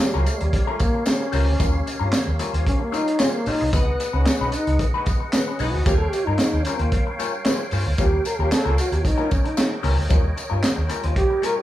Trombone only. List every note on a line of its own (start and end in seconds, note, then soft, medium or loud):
0.01 0.17 G3 medium
0.15 0.30 F#3 medium
0.28 0.42 A3 medium
0.40 0.69 G3 medium
0.68 0.81 A3 medium
0.80 1.09 A#3 loud
1.08 2.41 C#4 medium
2.68 2.80 C#4 loud
2.82 2.95 A#3 medium
2.94 3.22 D#4 loud
3.20 3.37 C#4 loud
3.36 3.50 A#3 medium
3.48 3.73 D#4 loud
3.74 4.17 B3 medium
4.15 4.58 C#4 medium
4.56 4.81 D#4 medium
5.36 5.50 B3 medium
5.48 5.62 C#4 medium
5.61 5.74 D#4 medium
5.72 5.85 F#4 medium
5.86 5.97 G4 loud
5.98 6.12 A4 loud
6.11 6.27 G4 medium
6.25 6.67 D#4 medium
6.66 6.81 C#4 medium
6.80 7.07 A#3 medium
8.00 8.24 G4 loud
8.27 8.41 A#4 medium
8.40 8.55 G4 loud
8.53 8.79 A4 loud
8.80 8.92 F#4 loud
8.93 9.06 G4 medium
9.05 9.33 D#4 medium
9.32 9.49 C#4 medium
9.47 9.73 D#4 medium
11.18 11.46 G4 loud
11.45 11.58 A#4 loud
11.59 11.62 G4 loud